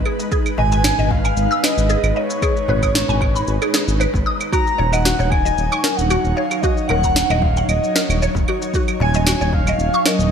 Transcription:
Already playing: G#3 D#4 B4
0.05 G#4, claves
0.19 darbuka tek, shaker
0.32 G#4, kick, shaker
0.46 claves, shaker
0.58 G#1 D#5 G#5, darbuka ka, darbuka dum
0.72 G#5, darbuka tek, shaker
0.84 snare, claves, shaker
0.98 G#1 D#5, darbuka dum, shaker
1.11 F5, kick, darbuka tek
1.25 G#5, darbuka ka, claves, shaker
1.37 G#1, shaker
1.51 E6, shaker
1.63 B4 D#5, snare, claves
1.77 G#1, shaker
1.90 G#4, shaker
2.03 G#1, claves, shaker
2.16 C#5 D#5, darbuka ka
2.30 darbuka ka, shaker
2.42 G#4, kick, claves, shaker
2.57 shaker
2.68 G#1 B4, darbuka ka, darbuka dum
2.83 D#6, kick, darbuka tek, claves, shaker
2.95 snare, shaker
3.09 G#1 G#5, darbuka dum, shaker
3.21 kick, darbuka tek, claves
3.34 B5, darbuka ka, shaker
3.47 G#1, shaker
3.62 G#4, claves, shaker
3.74 G#4, snare
3.88 G#1, shaker
4.00 B4, claves, shaker
4.14 G#1, kick, darbuka tek, shaker
4.26 D#6
4.41 darbuka tek, claves, shaker
4.52 F#3 F#4 C#5 A#5, kick, claves, shaker
4.67 shaker
4.78 D#1 C#5, darbuka ka, darbuka dum
4.92 D#5 F#5, darbuka tek, claves, shaker
5.05 F#4, snare, shaker
5.19 D#1 C#5, darbuka dum, shaker
5.30 G#5, kick, darbuka tek, claves
5.45 D#5, darbuka ka, shaker
5.58 D#1, shaker
5.72 C#6, claves, shaker
5.84 A#4, snare
5.97 D#1 F#5, shaker
6.10 F#4, claves, shaker
6.25 D#1, shaker
6.36 C#5 F5, darbuka ka
6.51 darbuka ka, claves, shaker
6.62 F#4 D#5, kick, shaker
6.77 shaker
6.88 D#1 A#4 F#5, darbuka ka, darbuka dum, claves
7.04 A#5, kick, darbuka tek, shaker
7.16 snare, shaker
7.30 D#1 D#5, darbuka dum, claves, shaker
7.42 F5, kick, darbuka tek
7.56 F#5, darbuka ka, shaker
7.69 D#1 D#5, claves, shaker
7.84 shaker
7.95 A#4, snare
8.09 D#1, claves, shaker
8.22 C#5, shaker
8.35 D#1, kick, darbuka tek, shaker
8.48 F#4, claves
8.62 darbuka tek, shaker
8.74 F#4, kick, shaker
8.88 claves, shaker
9.00 D#1 C#5 G#5, darbuka ka, darbuka dum
9.14 D#5, darbuka tek, shaker
9.27 F#4, snare, claves, shaker
9.40 D#1 C#5, darbuka dum, shaker
9.53 F5, kick, darbuka tek
9.67 D#5, darbuka ka, claves, shaker
9.79 D#1, shaker
9.94 C#6, shaker
10.06 A#4 D#5, snare, claves
10.19 D#1, shaker

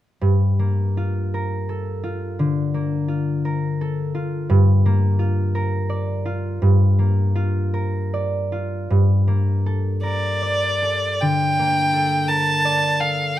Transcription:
0.21 G2
0.59 A#3
0.97 F4
1.34 A#4
1.69 A4
2.04 F4
2.39 D3
2.74 A#3
3.08 F4
3.45 A#4
3.81 A4
4.15 F4
4.50 G2
4.86 A#3
5.19 F4
5.55 A#4
5.90 D5
6.25 F4
6.62 G2
6.99 A#3
7.35 F4
7.74 A#4
8.14 D5
8.52 F4
8.90 G2
9.28 A#3
9.66 A4
10.03 A#4 D5
10.42 D5
10.82 A4
11.21 D3 G5
11.59 A#3
11.93 A4
12.28 A#4 A5
12.65 D5
13.00 A4 F5

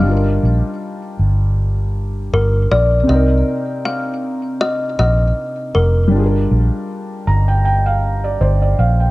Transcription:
Already playing: F5
0.00 G3 D4
0.05 G1 F4
0.11 A#4
0.43 A#1
1.19 G1
2.33 G1 A#4
2.71 A#1 D5
3.03 C3 C4
3.09 C2 D#4 D#5
3.15 A#4
3.85 F5
4.61 D#5
4.99 A#1 D#5
5.75 F1 A#4
6.08 G3 D4
6.13 G1 F4
6.19 G#4
6.26 A#4
6.51 A#1
7.27 G1 A#5
7.48 G5
7.65 G5
7.86 F5
8.24 D5
8.41 G1 C5 D5
8.62 D5
8.79 A#1 F5
9.00 G5

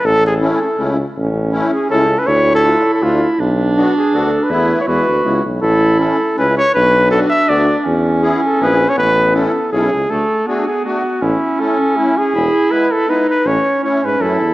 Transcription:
0.05 A1 A4
0.27 G#4
0.41 A3 C#4 E4 A4
0.78 C#2 A3 C#4 E4
1.16 A1 C#4
1.52 A3 C#4 E4
1.73 G#4
1.90 C#2 A3 C#4 E4 A4
2.19 B4
2.27 D2 E4 C#5
2.55 A4
2.65 A3 D4 F4
2.94 A4
3.02 D2 A3 D4 F4
3.39 B1 D4
3.76 B3 D4 F#4
3.98 G#4
4.13 D2 B3 D4 F#4 A4
4.43 B4
4.49 E2 A3 B3 E4
4.81 C#5
4.87 E2 G#3 B3 E4 F#4 B4
5.07 D2
5.25 C#2 G#3 B3 E4
5.45 B1
5.62 A1 E4 A4
5.98 A3 C#4 E4 A4
6.36 C#2 A3 C#4 E4 B4
6.57 C#5
6.74 B1 D4 B4
7.11 B3 D4 F#4 A4
7.30 E5
7.49 D2 B3 D4 F#4 D5
7.85 E2 C#4
8.23 B3 E4 G#4
8.46 A4
8.60 A#1 B3 E4 G#4 B4
8.89 C#5
8.97 A1 B3 B4
9.34 C#4 E4 A4
9.72 B1 C#4 E4 G#4 A4
9.93 C#2
10.09 D2 A3 A4
10.46 A3 B3 D4 F#4 G#4
10.67 G#4
10.85 A3 D4 F#4
11.22 A1 C#4 E4
11.60 A3 C#4 E4 A4
11.97 A3 C#4 E4
12.18 G#4
12.34 E1 E4
12.71 G#3 B3 E4 B4
12.91 A4
13.08 G#3 B3 D#4 E4 B4
13.29 B4
13.45 A1 C#4 C#5
13.83 A3 C#4 E4 C#5
14.03 G#2 B4
14.20 F#2 A3 C#4 E4 A4
14.41 E2

